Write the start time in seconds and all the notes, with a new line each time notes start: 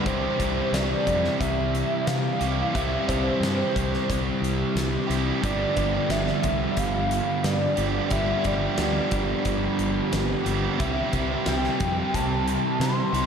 0.04 C2 C3 E3 G3 C4 E4 C5, kick, closed hi-hat
0.08 G4
0.39 C2, kick, closed hi-hat
0.72 C2 D5, snare, closed hi-hat
1.06 F2, kick, closed hi-hat
1.25 snare
1.40 C2 E5, kick, closed hi-hat
1.75 closed hi-hat
2.07 C3 F5, snare, closed hi-hat
2.39 C2 C3 E3 G3 E4 G4, closed hi-hat
2.73 C2 C3 E3 G3 C4 E4 G4 E5, kick, closed hi-hat
3.08 C2 C5, kick, closed hi-hat
3.40 G2, snare, closed hi-hat
3.76 C2, kick, closed hi-hat
3.94 snare
4.09 C2, kick, closed hi-hat
4.42 C2, closed hi-hat
4.75 C2, snare, closed hi-hat
5.07 C2 E3 G3 E4 G4, closed hi-hat
5.11 C3
5.41 G1 G2 D3 F3 G3 B3 G4 D5, kick, closed hi-hat
5.77 G1, kick, closed hi-hat
6.09 G1 E5, snare, closed hi-hat
6.27 snare
6.43 C2, kick, closed hi-hat
6.77 G1 F5, kick, closed hi-hat
7.11 closed hi-hat
7.44 G2 D5, snare, closed hi-hat
7.76 G1 D3 F3 G3 B3 G4, closed hi-hat
7.80 G2
8.10 G1 G2 D3 F3 G3 B3 G4 E5, kick, closed hi-hat
8.44 G1 D5, kick, closed hi-hat
8.78 D2, snare, closed hi-hat
9.11 G1, kick, closed hi-hat
9.45 G1, kick, closed hi-hat
9.79 G1, closed hi-hat
10.13 G1, snare, closed hi-hat
10.44 G1 D3 F3 G3 B3 G4, closed hi-hat
10.48 G2
10.78 C2 C3 E3 G3 C4 E4 G4 E5, kick, closed hi-hat
11.13 C2, kick, closed hi-hat
11.46 C2 G5, snare, closed hi-hat
11.64 snare
11.80 F2, kick, closed hi-hat
12.14 C2 A5, kick, closed hi-hat
12.48 closed hi-hat
12.79 C3 C6, snare, closed hi-hat
13.13 C2 C3 E3 G3 E4 G4, closed hi-hat